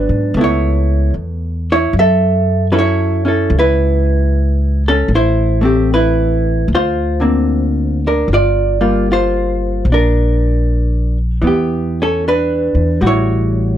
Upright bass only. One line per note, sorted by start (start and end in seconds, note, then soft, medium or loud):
0.09 0.33 G#2 soft
0.34 1.10 C#2 medium
1.14 1.89 E2 medium
1.93 3.47 F#2 medium
3.50 5.05 C#2 medium
5.08 6.63 A1 medium
6.68 8.23 D2 medium
8.28 9.82 G1 medium
9.85 11.39 A#1 medium
11.42 12.70 E2 medium
12.75 12.99 E2 soft
13.01 13.78 A1 medium